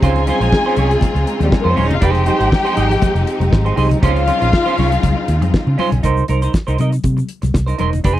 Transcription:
Already playing: C4 D#4
0.00 C#2 C#3 G#3 C#4 F4 G#4 C5 G#5, kick, closed hi-hat, muted conga, low conga
0.16 closed hi-hat, muted conga
0.27 C#4 F4 C5, closed hi-hat, high conga
0.40 A#1 C#4 F4 C5, closed hi-hat
0.52 muted clean electric guitar stroke, kick, snare, muted conga
0.65 C#4 F4 C5, muted conga
0.76 C2 C#4 F4 C#5, closed hi-hat, high conga
0.90 muted clean electric guitar stroke, closed hi-hat
1.01 muted clean electric guitar stroke, kick, closed hi-hat, muted conga, high conga, low conga
1.15 C#2, muted clean electric guitar stroke, closed hi-hat, muted conga
1.27 closed hi-hat
1.39 D#2 G3 G4, muted clean electric guitar stroke, snare, closed hi-hat, high conga
1.52 G#3 G#4, muted clean electric guitar stroke, kick, snare
1.61 A#3 A#4 C5
1.65 F2 C4 C#4 F4 C5, muted conga
1.76 D#1 C#4 F4 C5 C#5, open hi-hat, high conga
1.85 D#4 D#5
1.90 E1 F4 F5, muted clean electric guitar stroke, closed hi-hat, low conga
2.01 F1 F3 G#3 D#4 G4 G#4 C5 G5, kick, closed hi-hat, muted conga, low conga
2.15 closed hi-hat, muted conga
2.26 D#4 G#4 C5, closed hi-hat, high conga
2.39 G#1 D#4 G#4 C5, closed hi-hat
2.51 muted clean electric guitar stroke, kick, snare, muted conga
2.65 D#4 G#4 C5, closed hi-hat
2.76 G#1 D#4 G#4 D#5, closed hi-hat, high conga
2.90 muted clean electric guitar stroke, closed hi-hat
3.00 muted clean electric guitar stroke, kick, closed hi-hat, muted conga, high conga, low conga
3.14 F1, muted clean electric guitar stroke, closed hi-hat, muted conga
3.27 closed hi-hat
3.40 F1, muted clean electric guitar stroke, closed hi-hat, high conga
3.52 G#1, muted clean electric guitar stroke, kick, snare
3.65 D#4 G#4 C5, closed hi-hat, muted conga
3.76 C2 D#4 G#4 C5, open hi-hat, high conga
3.91 muted clean electric guitar stroke, closed hi-hat, low conga
4.02 C#2 C#3 G#3 C#4 D#4 F4 C5 F5, kick, closed hi-hat, muted conga, low conga
4.16 closed hi-hat, muted conga
4.27 C#4 F4 C5, closed hi-hat, high conga
4.40 A#1 C#4 F4 C5, closed hi-hat
4.53 muted clean electric guitar stroke, kick, snare, muted conga
4.66 C#4 F4 C5, closed hi-hat, muted conga
4.78 C2 C#4 F4 C#5, open hi-hat, high conga
4.91 muted clean electric guitar stroke, closed hi-hat
5.03 C#2, muted clean electric guitar stroke, kick, closed hi-hat, muted conga, high conga, low conga
5.15 muted clean electric guitar stroke, muted conga
5.28 D#2, closed hi-hat
5.41 F2, muted clean electric guitar stroke, closed hi-hat, high conga
5.54 kick, snare, muted conga
5.66 C#3, muted clean electric guitar stroke, muted conga
5.78 C#4 F4 C5, open hi-hat, high conga
5.92 B1, muted clean electric guitar stroke, closed hi-hat, low conga
6.03 C2 D#4 A#4 C5, kick, closed hi-hat, muted conga, low conga, shaker
6.17 muted conga, shaker
6.28 C2 D#4 A#4 C5, closed hi-hat, high conga, shaker
6.42 D#4 A#4 C5, closed hi-hat, shaker
6.54 muted clean electric guitar stroke, kick, snare, shaker
6.67 C2 D#4 A#4 C5, muted conga, shaker
6.78 C3 D#4 A#4 D#5, closed hi-hat, high conga, shaker
6.92 muted clean electric guitar stroke, closed hi-hat, shaker
7.04 C3, muted clean electric guitar stroke, kick, closed hi-hat, muted conga, high conga, low conga, shaker
7.17 muted clean electric guitar stroke, muted conga, shaker
7.29 closed hi-hat
7.42 C2, muted clean electric guitar stroke, snare, closed hi-hat, high conga, shaker
7.54 C2, muted clean electric guitar stroke, kick, snare, shaker
7.66 D#4 A#4 C5, closed hi-hat, shaker
7.78 E1 D#4 A#4 C5, closed hi-hat, high conga
7.92 muted clean electric guitar stroke, closed hi-hat, low conga, shaker
8.04 F1 D#4 G#4 C5, kick, closed hi-hat, low conga, shaker

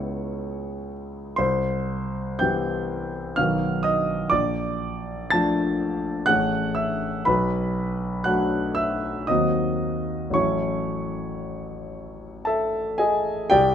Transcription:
Already playing: C#2 G#3 B3 C#4 E4 C#5 C#6
1.36 C2 C5 C6
2.39 E3 B3 E4 G4 G5 G6
3.36 B1 D#3 B3 F#4 A#4 F5 F6
3.83 D#5 D#6
4.30 A#1 D5 D6
5.30 F3 A3 D4 A5 A6
5.34 F4
6.26 A1 A3 C#4 G#4 F#5 F#6
6.75 E5 E6
7.25 B1 B4 B5
8.24 F#3 A3 D4 F#4 F#5 F#6
8.75 E5 E6
9.27 D#2 F#3 A#3 C4 F#4 D#5 D#6
10.30 A1 F#3 A3 C#4 C#6
10.35 E4 C#5
12.45 A4 E5 A5
12.98 G#4 D#5 G#5
13.50 C2 G4 D5 G5

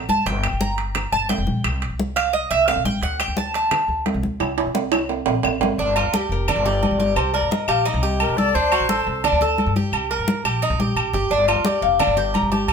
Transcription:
0.09 G1 A5, high conga
0.26 G1 G5, high conga, high timbale
0.43 high conga, high timbale, claves
0.52 G1
0.61 A#5, high conga
0.78 high conga, high timbale
0.95 high conga, low conga, high timbale, claves
1.12 G1 A5, high conga
1.29 G5, high conga, high timbale, low timbale
1.38 F1
1.47 A#1, high conga
1.64 C2, high conga, high timbale, claves
1.82 high conga, high timbale
1.90 C2
2.00 high conga
2.16 F5, high conga, high timbale, claves
2.33 D#5, high conga
2.51 C2 E5, high conga, high timbale
2.68 F5, high conga, high timbale, low timbale, claves
2.76 A#1
2.84 A1 G5, high conga
3.01 D2 F#5, high conga, high timbale
3.20 G5, high conga, high timbale, claves
3.28 D2
3.37 A5, high conga
3.54 A5, high conga, high timbale
3.71 high conga, low conga, high timbale, claves
3.88 D2, high conga
4.06 high conga, high timbale, low timbale
4.14 C2
4.23 D2, high conga
4.40 C2, high conga, high timbale, claves
4.58 high conga, high timbale
4.66 C2
4.75 high conga, low timbale
4.92 high conga, high timbale, claves
5.09 high conga, low timbale
5.26 A#1, high conga, low timbale
5.43 A1, high conga, low timbale, claves
5.61 G1, high conga, low timbale
5.78 G1 D4
5.96 F4, high conga, low agogo, claves
6.04 D2
6.13 G4, high conga, low agogo
6.29 F1 A#4, high conga
6.48 D4, high conga, low conga, low agogo, claves
6.56 G1
6.66 G4 D5, high conga, low conga
6.83 high conga, low agogo
6.91 G1
7.00 G4, high conga
7.16 C2 C5, high conga, low agogo, claves
7.34 A#4 D5, high conga, low agogo
7.42 G2
7.51 D#5, high conga
7.68 A#1 G4 F5, high conga, low agogo, claves
7.86 D#4 D#5, high conga, low agogo
7.94 C2
8.03 G4, high conga
8.20 A#4, high conga, low agogo, claves
8.29 C2
8.37 A4 D5, high conga
8.55 D2 D4 C5, high conga
8.72 F#4, high conga, low agogo, claves
8.80 A1
8.89 A4, high conga, low agogo
9.07 C2, high conga
9.24 D4, high conga, low conga, low agogo, claves
9.32 D2
9.41 A4, high conga, low conga
9.58 high conga, low agogo
9.66 G2
9.76 G4, high conga
9.92 C2, high conga, low agogo, claves
10.11 A#4, high conga, low agogo
10.19 G2
10.28 high conga
10.44 A#1 G4, high conga, low agogo, claves
10.62 D#4, high conga, low agogo
10.70 C2
10.79 A#1 G4, high conga
10.96 A1, low agogo, claves
11.13 G1 G4, low conga
11.30 G1 D4, high conga
11.48 F4, high conga, low agogo, claves
11.56 D2
11.65 G4 D5, high conga, low agogo
11.82 F1 F5, high conga
11.99 D4, high conga, low conga, low agogo, claves
12.07 G1
12.17 G4 G5, high conga, low conga
12.34 A#5, high conga, low agogo
12.42 G1
12.52 G4 A5, high conga
12.68 C2, low agogo, claves

